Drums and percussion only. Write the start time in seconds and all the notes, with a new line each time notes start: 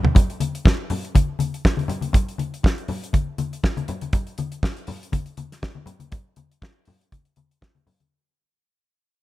0.03 floor tom, high conga
0.15 kick, closed hi-hat, muted conga, low conga
0.30 closed hi-hat
0.40 closed hi-hat, high conga
0.55 closed hi-hat
0.65 kick, snare, muted conga
0.90 open hi-hat, low conga
1.05 closed hi-hat
1.15 kick, closed hi-hat, high conga
1.39 closed hi-hat, muted conga, high conga
1.54 closed hi-hat
1.65 kick, snare
1.77 closed hi-hat, high conga
1.88 closed hi-hat, low conga
2.01 closed hi-hat, high conga
2.13 kick, closed hi-hat, muted conga, low conga
2.29 closed hi-hat
2.38 closed hi-hat, high conga
2.54 closed hi-hat
2.63 kick, snare, muted conga
2.78 closed hi-hat
2.88 open hi-hat, muted conga, low conga
3.04 closed hi-hat
3.13 kick, closed hi-hat, muted conga, high conga
3.38 closed hi-hat, muted conga, high conga
3.53 closed hi-hat
3.63 kick, snare, muted conga
3.77 closed hi-hat, high conga
3.88 closed hi-hat, muted conga, low conga
4.01 closed hi-hat, high conga
4.13 kick, closed hi-hat, muted conga, low conga
4.27 closed hi-hat
4.38 closed hi-hat, high conga
4.52 closed hi-hat
4.63 kick, snare, muted conga
4.77 closed hi-hat
4.87 open hi-hat, muted conga, low conga
5.03 closed hi-hat
5.12 kick, closed hi-hat, muted conga, high conga
5.26 closed hi-hat
5.37 closed hi-hat, high conga
5.52 snare, closed hi-hat
5.62 kick, snare, muted conga
5.75 high conga
5.86 closed hi-hat, muted conga, low conga
6.00 closed hi-hat, high conga
6.12 kick, closed hi-hat, low conga
6.36 closed hi-hat, high conga
6.51 closed hi-hat
6.62 kick, snare, muted conga
6.85 open hi-hat, muted conga, low conga
7.01 closed hi-hat
7.12 kick, closed hi-hat, high conga
7.25 closed hi-hat
7.36 closed hi-hat, muted conga, high conga
7.51 closed hi-hat
7.61 kick, snare, muted conga
7.75 closed hi-hat, high conga
7.87 open hi-hat, low conga
8.00 closed hi-hat, high conga